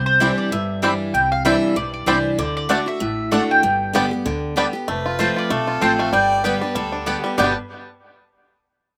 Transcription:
Already playing: C2 C3
0.06 C5
0.20 E3 G3 C4 D4 E4 D5 G5
0.38 D5
0.51 G1 G2 E5
0.82 E3 G3 C4 D4 E4 D5 G5
1.14 C2 C3 G5
1.32 F5
1.45 E3 G3 C4 D4 E4 D5 E5 G5
1.76 B1 G2 D5
1.94 D5
2.06 C2 E3 G3 C4 D4 E4 C5 D5 G5
2.38 D2 D3 D5
2.57 D5
2.69 D3 A3 D4 F#4 D5 F#5
2.86 D4 F#4 E5
3.00 A1 A2
3.31 D3 A3 D4 F#4 D5 F#5
3.51 G5
3.63 G1 G2
3.93 D3 G3 B3 D4 G4 D5 G5
4.11 B3 G4
4.26 D2 D3
4.56 D3 G3 B3 D4 G4 D5 G5
4.73 B3 G4
4.88 F1 F2 A3 B4
5.06 F4
5.19 F3 A3 C4 F4 C5 A5
5.36 F4 D5
5.50 B1 C3 A3 A4
5.67 F4
5.81 A1 F3 A3 C4 F4 C5 G5 A5
5.99 A3 F5
6.12 G1 G2 G3 D5 G5
6.44 D3 G3 B3 G4 B4 D5 G5
6.61 B3 D4 G4
6.75 D2 D3 G3 A4
6.92 D4
7.01 A4
7.06 D3 G3 B3 G4 D5 G5
7.24 G3 B3 G4
7.38 G1 G2 B2 D3 G3 B3 G4 B4 D5 G5
7.42 D4 G4

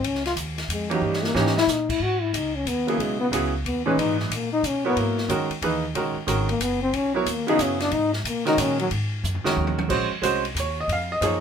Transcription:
0.03 C#2 C#4, ride
0.15 snare
0.25 F4, snare, ride
0.36 D#2, hi-hat pedal, ride
0.58 snare, ride
0.68 F2 G#3, hi-hat pedal, ride
0.90 E3 F#3 A#3 C#4 D#4 G4, ride
1.01 G2 G3
1.13 snare
1.24 A#3, snare
1.35 G#2 E3 A#3 C#4 D#4 G4, snare
1.46 snare
1.57 E4, snare
1.67 A#2 D#4, snare, hi-hat pedal
1.89 E4, kick, crash
1.99 G#2 F#4
2.22 E4
2.33 C#2 D#4, hi-hat pedal, ride
2.55 C#4
2.65 D#2 B3, hi-hat pedal, ride
2.87 C#3 F#3 A#3 B3 E4 G#4, ride
2.98 B1 G#3, ride
3.20 B3
3.31 C#2 C#3 F#3 B3 E4 G#4, hi-hat pedal, ride
3.64 D#2 B3, ride
3.86 A#2 E3 C#4 D#4 G#4 B4
3.97 G#2 D#4, ride
4.20 F#3, snare
4.30 A#2 A#3, hi-hat pedal, ride
4.53 D#4
4.63 B2 C#4, hi-hat pedal, ride
4.85 F#3 B3 E4 A#4 C#5
4.96 G#2 A#3, ride
5.18 snare
5.28 F#2 D#3 G#3 C#4 F#4 A#4, hi-hat pedal, ride
5.50 muted upright bass stroke, ride
5.61 D#2 E3 A#3 D#4 G#4 B4, ride
5.94 B1 D#3 G#3 C#4 F#4 A#4, ride
6.16 muted upright bass stroke
6.27 G#1 D#3 G#3 C#4 F#4 A#4, hi-hat pedal, ride
6.49 A#3, ride
6.59 F#1 B3, hi-hat pedal, ride
6.82 C4
6.93 B1 C#4, ride
7.14 F#3 B3 E4 A#4 C#5
7.26 D#2 A#3, hi-hat pedal, ride
7.47 C#3 F#3 B3 D#4 E4 G#4, ride
7.58 F#2 C#4, hi-hat pedal, ride
7.80 D4, snare, ride
7.91 G#2 D#4, ride
8.13 F#3, snare
8.24 B2 A#3, hi-hat pedal, ride
8.45 D#3 G#3 C#4 D#4 F#4 A#4, snare, ride
8.57 A#2 C#4, hi-hat pedal, ride
8.79 F#3, ride
8.91 G#2, ride
9.23 F#2, floor tom, hi-hat pedal
9.35 floor tom
9.44 D#3 G#3 C#4 F#4 A#4, muted upright bass stroke, snare
9.56 D#2, high tom
9.67 high tom
9.79 high tom
9.89 A#1 G#3 C#4 F#4 C5, kick, crash
10.11 muted upright bass stroke
10.22 C2 G#3 C#4 F#4 C5, hi-hat pedal, ride
10.45 ride
10.55 D#2, hi-hat pedal, ride
10.60 C#5
10.80 D#5
10.88 F2, ride
10.93 F5
11.12 D#5
11.21 F#2 F3 A#3 D#4 G#4, hi-hat pedal, ride
11.26 C#5

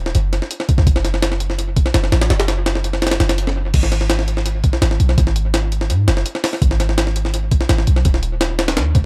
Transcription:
Already playing: D#1
0.06 snare
0.15 F#1, closed hi-hat
0.33 snare, closed hi-hat
0.42 snare
0.51 closed hi-hat
0.60 snare
0.69 kick, closed hi-hat
0.78 C#2, snare
0.87 F#1, kick, closed hi-hat
0.96 snare
1.05 snare, closed hi-hat
1.14 snare
1.22 snare, closed hi-hat
1.32 snare
1.40 closed hi-hat
1.50 snare
1.59 closed hi-hat
1.76 kick, closed hi-hat
1.86 snare
1.94 F#1, snare, closed hi-hat
2.04 snare
2.12 A1, snare, closed hi-hat
2.21 snare, closed hi-hat
2.30 F#1, snare, closed hi-hat
2.40 snare, closed hi-hat
2.48 snare, closed hi-hat
2.66 snare, closed hi-hat
2.75 snare
2.84 closed hi-hat
2.93 snare
3.02 snare, closed hi-hat
3.07 snare, closed hi-hat
3.11 snare, closed hi-hat
3.20 F#1, snare, closed hi-hat
3.29 snare, closed hi-hat
3.38 closed hi-hat
3.47 snare
3.74 G#1, kick, closed hi-hat, crash
3.83 snare
3.92 snare, closed hi-hat
4.01 snare
4.10 snare, closed hi-hat
4.19 snare
4.28 closed hi-hat
4.37 snare
4.46 closed hi-hat
4.64 kick, closed hi-hat
4.73 snare
4.82 G#1, snare, closed hi-hat
4.91 snare
5.00 B1, closed hi-hat
5.09 snare
5.18 G#1, kick, closed hi-hat
5.27 snare
5.36 closed hi-hat
5.54 snare, closed hi-hat
5.72 closed hi-hat
5.81 snare
5.90 G#2, closed hi-hat
6.08 F#1, snare, closed hi-hat
6.17 snare
6.26 closed hi-hat
6.35 snare
6.44 snare, open hi-hat
6.53 snare
6.62 G#1, kick, closed hi-hat
6.71 snare
6.80 snare, closed hi-hat
6.89 snare
6.98 snare, closed hi-hat
7.07 snare
7.16 closed hi-hat
7.25 snare
7.34 closed hi-hat
7.51 kick, closed hi-hat
7.61 snare
7.69 G#1, snare, closed hi-hat
7.78 snare
7.87 B1, closed hi-hat
7.96 snare
8.05 D#1, kick, closed hi-hat
8.14 snare
8.23 closed hi-hat
8.41 snare, closed hi-hat
8.59 snare, closed hi-hat
8.68 snare, closed hi-hat
8.77 D#2, snare, closed hi-hat
8.95 C#2, kick, closed hi-hat

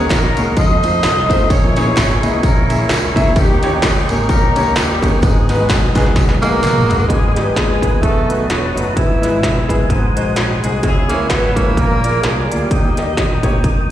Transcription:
Already playing: D#3 A#4 D#5 F#5 C#6
0.01 A#3 C#4 D#4 F#4 C#5
0.10 A#1 A#3 C#4 F#4 A#4, kick, snare, clap, ride, tambourine
0.37 C#2 A#3 C#4 D#4 F#4 G#4, ride, tambourine
0.56 F2 D#4 A4 C5 D#5 F5 C6, kick, ride, tambourine
0.83 A3 C4 D#4 F4 C5, ride, tambourine
1.03 C2, snare, clap, ride, tambourine
1.30 G1 A3 C4 D#4 F4 C5, kick, ride, tambourine
1.50 A#1 C#4 E4 G#4 A#4 C#5 E5 G#5 C#6, kick, ride, tambourine
1.76 A#3 C#4 E4 G#4 C#5, snare, ride, tambourine
1.86 A#3 C#4 E4 G#4 C#5
1.97 G#1, kick, snare, clap, ride, tambourine
2.23 C#2 A#3 B3 C#4 E4 G#4 B4 D#5, ride, tambourine
2.43 A#1 A#3 C#4 E4 A#4, kick, ride, tambourine
2.70 A#3 C#4 E4 G#4 E5, ride, tambourine
2.89 C#2, snare, clap, ride, tambourine
3.16 C#2 A#3 C#4 E4 G#4 E5, kick, ride, tambourine
3.36 D#2 D#3 G3 A#3 C#4 G4 A#4 D#5 G5, kick, ride, tambourine
3.63 A#3 C#4 D#4 G4 C#5, snare, ride, tambourine
3.73 A#3 C#4 D#4 G4 A#4
3.82 C#2 G#3 C#4 G#4, kick, snare, clap, ride, tambourine
4.09 G#1 A#3 C#4 D#4 G4 A#4, ride, tambourine
4.29 A#1 A#3 C#4 G4 A#4, kick, ride, tambourine
4.55 C#2 A#3 C#4 D#4 G4 C#5, ride, tambourine
4.75 D#2 G3 G4, snare, clap, ride, tambourine
5.02 G1 G#3 A#3 B3 C#4 D#4 G4 G#4 A#4, kick, ride, tambourine
5.22 G#1 G#2 G#4 F#5, kick, ride, tambourine
5.49 G#3 B3 D#4 F#4 B4, snare, ride, tambourine
5.60 G#3 B3 D#4 F#4 B4
5.70 B1, kick, snare, clap, ride, tambourine
5.96 C#2 G#3 B3 D#4 F#4 G#4, kick, clap, ride, tambourine
6.06 snare
6.16 B1, kick, snare, ride, tambourine
6.29 snare
6.42 G#3 A#3 B3 D#4 F#4 G#4, high tom, ride, tambourine
6.46 A#3 A#4
6.53 high tom
6.63 A#1, clap, mid tom, ride, tambourine
6.77 mid tom
6.89 G#1 G#3 B3 D#4 F#4 B4, floor tom, ride, tambourine
7.00 floor tom
7.08 G#1 G#2 G#3 B3 D#4 B4 D#5 G#5 D#6, kick, closed hi-hat
7.13 G#3 G#4
7.34 G3 G#3 B3 D#4 G4 B4, snare, closed hi-hat
7.54 D#2 G#3 B3 D#4 G#4, kick, snare, closed hi-hat
7.82 G#3 B3 D#4 B4, kick, closed hi-hat
8.01 B1 B2 A3 D#4 F#4 A4 F#5 A5, kick, closed hi-hat
8.29 G#3 A3 D#4 F#4 G#4 B4, closed hi-hat
8.48 E1 F#3 A3 D#4 F#4, snare, closed hi-hat
8.73 F#1 F#3 A3 D#4 F#4 B4, closed hi-hat
8.94 G#1 G#2 E3 G#3 B3 E4 E5 G#5 E6, kick, closed hi-hat
9.22 G#3 B3 E4 B4, snare, closed hi-hat
9.43 B1, kick, snare, closed hi-hat
9.68 G#3 B3 E4 G#4, kick, closed hi-hat
9.89 G#1 G#2 C5 F#5 D#6, kick, closed hi-hat
10.16 A#1 G#3 D#4 F#4 C5, closed hi-hat
10.36 A#1, snare, closed hi-hat
10.64 C2 G#3 D#4 F#4 G#4, closed hi-hat
10.83 C#2 C#3 G#3 C#4 E4 G#4 C#5 E5 E6, kick, closed hi-hat
11.09 G#3 A#3 C#4 E4 C#5, snare, closed hi-hat
11.29 G#1 B3 E4 G#4 B4, kick, snare, closed hi-hat
11.56 G#3 A#3 C#4 E4 C#5, kick, closed hi-hat
11.77 A#1 A#2 A#3 D4 F4 A#4 F5 D6, kick, closed hi-hat
12.04 A#3 F4 G#4 D5, closed hi-hat
12.22 C2 G#3 G#4, snare, closed hi-hat
12.42 F#3
12.49 D2 G3 A#3 D#4 F4 G4 G#4 D5, closed hi-hat
12.71 D#2 D#3 D#5 G5 D#6, kick, closed hi-hat
12.97 A#3 D#4 G4 D#5, snare, closed hi-hat
13.17 A#1, kick, snare, closed hi-hat
13.43 A#3 D#4 G4 C#5, kick, closed hi-hat
13.64 C#2, kick, closed hi-hat

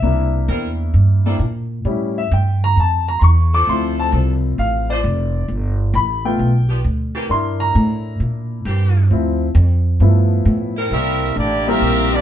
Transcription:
Already playing: E5
0.02 C2 A#3 D4 E4
0.48 E2 G3 C4 E4 A#4
0.94 G2
1.25 G3 A#3 C4 D4 E4 A4
1.39 A#2
1.85 A2 G3 C#4 E4
2.18 E5
2.31 G2 G5
2.64 A#5
2.76 F2 A5
3.08 A#5
3.19 E2 C6
3.24 C#6
3.52 F3 C4 D4 A4 D6
3.67 D2 F3 C4 E4 C6
3.99 A5
4.12 C2 F3 C4 D4 A4
4.58 A1 F5
4.90 F3 C4 D4 C5 D5
5.04 F1
5.48 G1
5.94 A1 B5
6.25 A3 B3 F4 G5
6.39 B1
6.69 F3 B3 D4 G4
6.84 D2
7.14 E3 A#3 C4 G4
7.29 G2 D4 E4 A#4 C6
7.60 A#5
7.75 A2
8.20 A#2
8.65 G2 E3 A#3 C4 G4
9.11 D2 F3 C4 E4
9.55 F2
10.00 G2 F3 A3 B3 E4
10.45 A2
10.76 G3 C4 E4 A#4
10.90 C2 G3 A#3 C4 E4 G4 A#4 E5
11.36 A1 A#3 D4 E4 G4 D5
11.67 G3 A#3 C4 E4 G4 A#4 E5
11.81 A#1
12.13 A#3 D4 E4 G4 D5

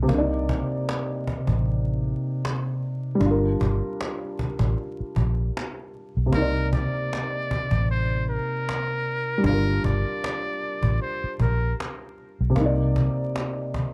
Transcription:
Already playing: A#4
0.03 C3
0.08 C2 A#3, cajon bass
0.13 D4
0.18 D#4 D5
0.49 cajon bass
0.89 cajon slap
1.27 cajon bass
1.47 A1, cajon bass
1.65 cajon slap
2.04 cajon slap
2.45 cajon slap
2.83 cajon slap
3.15 G3
3.20 G1 D4, cajon bass
3.26 F4
3.31 A#4
3.61 G1, cajon bass
4.01 cajon slap
4.39 cajon bass
4.59 A1, cajon bass
4.78 cajon slap
5.00 muted fingered electric bass stroke
5.16 A#1, cajon bass
5.57 cajon slap
5.80 cajon slap
5.95 cajon slap
6.17 B1
6.26 C3
6.31 C2 A#3 A#4, cajon bass
6.37 D#4
6.42 D5
6.73 D5, cajon bass
7.13 cajon slap
7.51 cajon bass
7.71 A1, cajon bass
7.89 C5, cajon slap
8.28 A#4, cajon slap
8.69 cajon slap
9.06 cajon slap
9.38 G3
9.43 G1 D4 A#4, cajon bass
9.48 F4
9.53 A#4
9.84 G1 D5, cajon bass
10.24 cajon slap
10.63 cajon slap
10.83 A1, cajon bass
11.01 C5, cajon slap
11.24 muted fingered electric bass stroke
11.40 A#1 A#4, cajon bass
11.80 cajon slap
12.18 cajon slap
12.41 B1
12.50 C3
12.55 C2 A#3, cajon bass
12.60 D#4
12.66 D5
12.96 cajon bass
13.36 cajon slap
13.74 cajon bass

